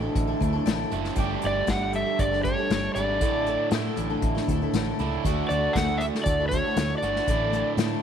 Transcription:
Already playing: A2 D3 A3 D4 E4
0.02 A3 D4 E4 A4
0.15 A1, kick, closed hi-hat
0.27 A3 D4 E4 A4
0.40 D2 A3 D4 E4 A4, kick, closed hi-hat
0.52 A3 D4 E4 A4
0.65 A1 A2 D3 A3 D4 E4 A4, snare, closed hi-hat
0.91 F#1 A2 D3 A3 D4 E4 A4, closed hi-hat
1.04 snare
1.16 G1 G3 A3 D4 G4 A4, kick, closed hi-hat
1.42 G1 G3 D4 G4 A4, closed hi-hat
1.46 D5
1.67 G1 G3 D4 G4 A4 F#5, kick, snare, closed hi-hat
1.93 G3 D4 G4 A4 E5, closed hi-hat
2.06 D4 G4 A4
2.19 G1 D5, kick, closed hi-hat
2.31 D4 G4 A4, snare
2.43 G3 D4 G4 A4 C#5, kick, closed hi-hat
2.58 D4 G4 A4
2.70 G1 G3 D4 G4 A4, snare, closed hi-hat
2.95 G#1 G3 A3 D4 G4 A4 D5, closed hi-hat
3.20 A1 A2 D3 A3 D4 E4 A4, kick, closed hi-hat
3.46 A3 D4 E4 A4, closed hi-hat
3.71 A2 D3 A3 D4 E4 A4, snare, closed hi-hat
3.96 A1 A3 D4 E4 A4, closed hi-hat
4.10 A3 D4 E4 A4
4.22 A1, kick, closed hi-hat
4.35 A3 D4 E4 A4, snare
4.48 D2 A3 D4 E4 A4, kick, closed hi-hat
4.62 A3 D4 E4 A4
4.73 A1 A2 D3 A3 D4 E4 A4, snare, closed hi-hat
4.99 C#2 A2 D3 A3 D4 E4 A4, closed hi-hat
5.24 D2 D3 A3 D4 E4 F#4 A4, kick, closed hi-hat
5.49 D2 A3 E4 F#4 A4 D5, closed hi-hat
5.73 D2 D3 A3 E4 F#5, kick, snare, closed hi-hat
5.77 F#4 A4
5.98 E5, closed hi-hat
6.02 A3 E4 F#4 A4
6.15 E4 F#4 A4, snare
6.24 D2 D5, kick, closed hi-hat
6.40 E4 F#4 A4
6.49 C#5, kick, closed hi-hat
6.53 A3 E4 F#4 A4
6.66 E4 F#4 A4
6.76 D2 D3 A3 E4 F#4 A4, snare, closed hi-hat
6.98 G1 D5
7.02 D3 A3 D4 E4 F#4 A4, closed hi-hat
7.16 snare
7.27 A1 A2 D3 A3 D4 E4 A4, kick, closed hi-hat
7.52 A3 D4 E4 A4, closed hi-hat
7.77 A2 D3 A3 D4 E4 A4, snare, closed hi-hat

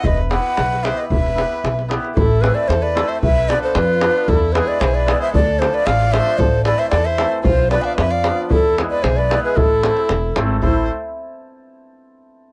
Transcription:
0.04 E1 B4 D#5, davul low
0.17 davul high
0.30 B3 E4 G4 B4 F#5, davul high
0.57 B1, davul high
0.72 davul high
0.83 B3 E4 G4 B4 C5 E5, davul high
0.98 B4 D#5, davul high
1.09 E1 B4 E5, davul low
1.26 davul high
1.35 B3 E4 G4 B4, davul high
1.52 davul high
1.64 B1, davul high
1.79 davul high
1.88 B3 E4 G4 B4, davul high
2.05 davul high
2.15 A1 E4 A4, davul low
2.41 A3 C4 E4 G#4 A4 B4 C5, davul high
2.55 B4 D5
2.68 E2 A4 C5, davul high
2.82 B4 D5
2.95 A3 C4 E4 A4 C5, davul high
3.08 C5 E5
3.21 B1 B4 E5, davul low
3.48 F3 B3 D4 F4 B4 D5, davul high
3.62 A4 C5
3.75 F2 F4 B4, davul high
4.00 F3 B3 D4 F4 B4, davul high
4.28 E2 E4 A4, davul low
4.52 E3 G#3 B3 E4 G#4 A4 B4 C5, davul high
4.68 B4 D5
4.81 B1 G#4 C5, davul high
4.94 B4 D5
5.06 E3 G#3 B3 E4 G#4, davul high
5.21 C5 E5
5.33 D2 A4 D5, davul low
5.59 F3 A3 D4 F4 A4 C5, davul high
5.74 B4 D5
5.86 A1 D5 F5, davul high
6.01 davul high
6.12 F3 A3 D4 F4 A4 C5 E5, davul high
6.26 davul high
6.38 A1 A4 C5, davul low
6.65 E3 A3 C4 E4 A4 B4 D5, davul high
6.78 C5 E5
6.90 E2 A4 D5, davul high
7.05 C5 E5
7.18 E3 A3 C4 E4 A4, davul high
7.44 B1 F4 C5, davul low
7.70 F3 B3 D4 F4 B4 D5, davul high
7.82 D5 E5 F5 G#5
7.97 F2 B4 E5, davul high
8.11 D5 F5
8.24 F3 B3 D4 F4 B4, davul high
8.50 E2 E4 A4, davul low
8.78 G#3 B3 E4 G#4 B4, davul high
8.90 B4 D5
9.03 B1 G#4 C5, davul high
9.16 B4 D5
9.30 G#3 B3 E4 G#4 B4, davul high
9.43 G#4 B4
9.56 A1 E4 A4, davul low
9.82 A3 C4 E4 A4 C5, davul high
9.97 davul high
10.09 E1, davul high
10.36 G#1 A3 C4 E4 A4 C5, davul high
10.62 A1 A3 C4 E4 A4 C5, davul low

